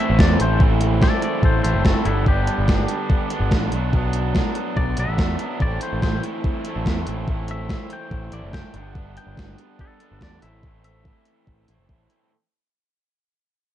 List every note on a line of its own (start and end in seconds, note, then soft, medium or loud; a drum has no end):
0.00 0.18 A2 medium
0.00 0.18 E3 medium
0.00 0.19 A3 soft
0.00 0.19 C4 medium
0.00 0.20 E4 medium
0.00 0.19 E5 medium
0.10 0.18 A1 medium
0.18 0.36 E2 medium
0.18 0.59 A2 medium
0.18 0.59 E3 medium
0.18 0.41 A3 medium
0.18 0.40 C4 medium
0.18 0.39 E4 medium
0.18 0.39 D5 medium
0.18 kick loud
0.18 snare loud
0.39 1.07 A1 medium
0.39 0.60 A3 medium
0.39 0.61 C4 medium
0.39 0.62 E4 medium
0.39 0.61 C5 medium
0.39 closed hi-hat medium
0.60 1.22 A2 medium
0.60 1.00 E3 medium
0.60 1.01 A3 medium
0.60 1.02 C4 medium
0.60 1.03 E4 medium
0.60 kick loud
0.81 closed hi-hat medium
1.02 1.84 E3 medium
1.02 1.65 A3 medium
1.02 1.64 C4 medium
1.02 1.62 E4 medium
1.02 1.22 A4 medium
1.02 1.23 D5 medium
1.02 kick medium
1.02 snare medium
1.22 1.42 A4 medium
1.22 1.43 D5 medium
1.22 closed hi-hat medium
1.43 1.60 A1 medium
1.43 1.62 A4 medium
1.43 1.62 C5 medium
1.43 kick medium
1.63 1.73 A1 medium
1.63 1.85 A3 medium
1.63 1.85 C4 medium
1.63 1.85 E4 medium
1.63 1.83 A4 medium
1.63 1.84 C5 medium
1.63 closed hi-hat medium
1.74 1.83 F#1 medium
1.84 1.93 F#1 medium
1.84 2.04 A2 medium
1.84 2.04 E3 medium
1.84 2.05 A3 medium
1.84 2.04 C4 medium
1.84 2.05 C4 medium
1.84 2.05 E4 medium
1.84 2.05 A4 medium
1.84 kick medium
1.84 snare loud
2.05 2.48 G1 medium
2.05 2.25 G2 medium
2.05 2.25 D3 medium
2.05 2.26 G3 medium
2.05 2.27 B3 medium
2.05 2.28 D4 medium
2.05 2.25 E4 medium
2.05 2.26 A4 medium
2.05 closed hi-hat medium
2.26 2.89 G2 medium
2.26 2.67 D3 medium
2.26 2.68 G3 medium
2.26 2.70 B3 medium
2.26 2.70 D4 medium
2.26 3.49 G4 medium
2.26 kick loud
2.47 closed hi-hat medium
2.58 2.67 G1 medium
2.68 2.85 G1 medium
2.68 3.52 D3 medium
2.68 3.32 G3 medium
2.68 3.31 B3 medium
2.68 3.30 D4 medium
2.68 kick loud
2.68 snare loud
2.88 closed hi-hat medium
3.10 kick medium
3.30 3.53 G3 soft
3.30 3.53 B3 medium
3.30 3.54 D4 medium
3.30 closed hi-hat medium
3.40 3.49 G1 medium
3.51 3.69 A1 medium
3.51 3.72 G2 medium
3.51 3.72 D3 medium
3.51 3.72 G3 medium
3.51 3.73 B3 medium
3.51 3.71 D4 medium
3.51 kick medium
3.51 snare medium
3.72 4.40 B1 medium
3.72 3.93 F#3 medium
3.72 3.94 B3 medium
3.72 3.95 D4 medium
3.72 closed hi-hat medium
3.76 3.92 B2 medium
3.93 4.33 B2 medium
3.93 4.35 F#3 medium
3.93 4.35 B3 medium
3.93 4.36 D4 medium
3.93 kick medium
4.13 closed hi-hat medium
4.35 5.17 B2 medium
4.35 5.00 F#3 medium
4.35 4.98 B3 medium
4.35 4.97 D4 medium
4.35 kick medium
4.35 snare medium
4.55 closed hi-hat medium
4.77 4.94 B1 medium
4.77 4.97 D5 medium
4.77 kick medium
4.97 5.06 B1 medium
4.97 5.17 F#3 soft
4.97 5.19 B3 medium
4.97 5.19 D4 medium
4.97 5.60 E5 medium
4.97 closed hi-hat medium
5.08 5.17 A1 medium
5.18 5.35 E2 medium
5.18 5.59 B2 medium
5.18 5.40 F#3 medium
5.18 5.39 B3 medium
5.18 5.37 D4 medium
5.18 kick medium
5.18 snare medium
5.38 5.60 F#3 medium
5.38 5.59 B3 medium
5.38 5.59 D4 medium
5.38 closed hi-hat medium
5.60 5.77 A1 medium
5.60 6.85 A2 medium
5.60 6.03 E3 medium
5.60 6.04 A3 medium
5.60 6.04 C4 medium
5.60 6.06 E4 medium
5.60 5.82 D5 medium
5.60 kick loud
5.81 6.01 C5 medium
5.81 closed hi-hat medium
5.93 6.01 A1 medium
6.02 6.20 A1 medium
6.02 6.85 E3 medium
6.02 6.67 A3 medium
6.02 6.66 C4 medium
6.02 6.64 E4 medium
6.02 6.23 C5 medium
6.02 kick medium
6.02 snare medium
6.24 closed hi-hat medium
6.44 kick medium
6.65 6.86 A3 medium
6.65 6.86 C4 medium
6.65 6.87 E4 medium
6.65 closed hi-hat medium
6.76 6.84 A1 medium
6.85 7.03 E2 medium
6.85 7.27 A2 medium
6.85 7.28 E3 medium
6.85 7.08 A3 medium
6.85 7.07 C4 medium
6.85 7.05 E4 medium
6.85 kick medium
6.85 snare medium
7.06 7.75 A1 medium
7.06 7.28 A3 medium
7.06 7.29 C4 medium
7.06 7.30 E4 medium
7.06 closed hi-hat medium
7.28 7.91 A2 medium
7.28 7.69 E3 medium
7.28 7.71 A3 medium
7.28 7.71 C4 medium
7.28 7.72 E4 medium
7.28 kick loud
7.48 7.91 E5 medium
7.48 closed hi-hat medium
7.70 8.53 E3 medium
7.70 8.34 A3 medium
7.70 8.33 C4 medium
7.70 8.31 E4 medium
7.70 kick medium
7.70 snare medium
7.90 8.32 G5 medium
7.90 closed hi-hat medium
8.11 8.28 A1 medium
8.11 kick medium
8.32 8.41 A1 medium
8.32 8.53 A3 soft
8.32 8.54 C4 medium
8.32 8.55 E4 medium
8.32 8.53 D5 medium
8.32 closed hi-hat medium
8.43 8.52 F#1 medium
8.53 8.62 F#1 medium
8.53 8.73 A2 medium
8.53 8.74 E3 medium
8.53 8.74 A3 medium
8.53 8.74 C4 medium
8.53 8.74 E4 medium
8.53 8.97 G5 medium
8.53 kick medium
8.53 snare medium
8.74 9.17 G1 medium
8.74 8.93 G2 medium
8.74 8.94 D3 medium
8.74 8.95 G3 medium
8.74 8.96 B3 medium
8.74 8.96 D4 medium
8.74 closed hi-hat medium
8.95 9.58 G2 medium
8.95 9.35 D3 medium
8.95 9.37 G3 medium
8.95 9.37 B3 medium
8.95 9.38 D4 medium
8.95 9.17 E5 medium
8.95 kick loud
9.17 9.58 G5 medium
9.17 closed hi-hat medium
9.27 9.35 G1 medium
9.36 9.54 G1 medium
9.36 10.21 D3 medium
9.36 10.01 G3 medium
9.36 10.00 B3 medium
9.36 9.99 D4 medium
9.36 kick medium
9.36 snare medium
9.58 closed hi-hat medium
9.79 10.21 A4 medium
9.79 kick medium
10.00 10.22 G3 soft
10.00 10.23 B3 soft
10.00 10.23 D4 medium
10.00 closed hi-hat medium
10.12 10.20 G1 medium
10.21 10.38 E2 medium
10.21 10.41 G2 medium
10.21 10.42 D3 medium
10.21 10.42 G3 medium
10.21 10.42 B3 medium
10.21 10.42 D4 medium
10.21 10.42 D5 medium
10.21 kick medium
10.21 snare medium
10.42 11.10 A1 medium
10.42 10.62 A2 medium
10.42 10.63 E3 medium
10.42 10.64 A3 medium
10.42 10.65 C4 medium
10.42 10.65 E4 medium
10.42 10.83 E5 medium
10.42 closed hi-hat medium
10.63 11.26 A2 medium
10.63 11.03 E3 medium
10.63 11.04 A3 medium
10.63 11.06 C4 medium
10.63 11.06 E4 medium
10.63 kick medium
10.84 11.66 E5 medium
10.84 closed hi-hat medium
11.05 11.89 E3 medium
11.05 11.70 A3 medium
11.05 11.69 C4 medium
11.05 11.68 E4 medium
11.05 kick medium
11.25 closed hi-hat medium
11.47 11.64 A1 medium
11.47 kick medium
11.68 11.77 A1 medium
11.68 11.90 A3 soft
11.68 11.90 C4 medium
11.68 11.91 E4 medium
11.68 closed hi-hat medium
11.78 11.87 F#1 medium
11.89 12.06 A1 medium
11.89 12.30 A2 medium
11.89 12.30 E3 medium
11.89 12.11 A3 medium
11.89 12.10 C4 medium
11.89 12.09 E4 medium
11.89 kick medium
12.10 12.31 A3 soft
12.10 12.31 C4 medium
12.10 12.30 E4 medium
12.10 closed hi-hat medium